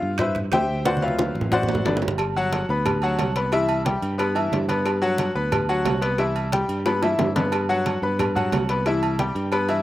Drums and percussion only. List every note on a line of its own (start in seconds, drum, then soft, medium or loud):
0.02 high conga soft
0.18 high bongo medium
0.18 high conga soft
0.18 low conga medium
0.18 high timbale loud
0.35 high conga soft
0.35 low conga medium
0.35 high timbale medium
0.52 high bongo medium
0.52 low bongo medium
0.52 high conga medium
0.52 high timbale medium
0.52 low timbale medium
0.69 high conga soft
0.85 high bongo medium
0.85 high conga loud
0.85 high timbale medium
0.97 high conga loud
1.02 high timbale medium
1.08 high conga medium
1.19 high bongo medium
1.19 high conga loud
1.19 high timbale medium
1.35 high bongo soft
1.41 low conga medium
1.52 high bongo medium
1.52 low conga medium
1.63 low conga medium
1.69 high bongo soft
1.69 low timbale medium
1.75 low conga loud
1.85 high bongo medium
1.85 low bongo medium
1.85 low timbale medium
1.97 low conga medium
2.02 high bongo soft
2.02 low timbale medium
2.08 low conga medium
2.18 cowbell loud
2.18 high conga soft
2.18 low agogo loud
2.36 high conga soft
2.52 cowbell medium
2.52 high conga loud
2.52 low timbale medium
2.52 low agogo medium
2.69 high conga soft
2.86 cowbell loud
2.86 high conga soft
2.86 low conga medium
2.86 low agogo loud
3.02 high conga soft
3.02 low agogo medium
3.19 cowbell medium
3.19 high conga medium
3.19 low timbale medium
3.19 low agogo loud
3.36 cowbell medium
3.36 high conga soft
3.52 cowbell loud
3.52 high conga soft
3.52 low agogo medium
3.69 high conga soft
3.69 low agogo loud
3.86 cowbell medium
3.86 high conga loud
3.86 low timbale medium
4.02 high conga soft
4.02 low agogo medium
4.19 cowbell loud
4.19 high conga soft
4.19 low agogo loud
4.36 high conga soft
4.36 low agogo loud
4.53 cowbell medium
4.53 high conga medium
4.53 low timbale medium
4.69 cowbell medium
4.69 high conga medium
4.69 low agogo loud
4.86 cowbell loud
4.86 high conga soft
4.86 low agogo medium
5.02 high conga soft
5.18 cowbell medium
5.18 high conga loud
5.18 low timbale medium
5.18 low agogo medium
5.35 high conga soft
5.52 cowbell loud
5.52 high conga soft
5.52 low conga medium
5.52 low agogo loud
5.69 high conga soft
5.69 low agogo medium
5.85 cowbell medium
5.85 high conga medium
5.85 low timbale medium
5.85 low agogo loud
6.02 cowbell medium
6.18 cowbell loud
6.18 high conga soft
6.18 low agogo medium
6.36 high conga soft
6.36 low agogo loud
6.52 cowbell medium
6.52 high conga loud
6.52 low timbale medium
6.69 high conga soft
6.69 low agogo medium
6.86 cowbell loud
6.86 high bongo loud
6.86 high conga soft
6.86 low agogo medium
7.02 high bongo loud
7.02 high conga soft
7.02 low agogo loud
7.19 cowbell medium
7.19 low bongo loud
7.19 high conga medium
7.19 low timbale medium
7.36 cowbell medium
7.36 low bongo loud
7.36 high conga medium
7.36 low agogo loud
7.52 cowbell loud
7.52 high conga soft
7.52 low agogo loud
7.69 high conga soft
7.86 cowbell medium
7.86 high conga medium
7.86 low timbale medium
7.86 low agogo medium
8.03 high conga soft
8.19 cowbell loud
8.19 high conga soft
8.19 low conga medium
8.19 low agogo loud
8.36 high conga soft
8.36 low conga medium
8.36 low agogo medium
8.52 cowbell medium
8.52 high conga medium
8.52 low timbale medium
8.52 low agogo loud
8.69 cowbell medium
8.86 cowbell loud
8.86 high conga soft
8.86 low agogo medium
9.03 high conga soft
9.03 low agogo loud
9.19 cowbell medium
9.19 high conga loud
9.19 low timbale medium
9.36 high conga soft
9.36 low agogo medium
9.52 cowbell loud
9.52 high conga soft
9.52 low agogo loud
9.69 high conga soft
9.69 low agogo loud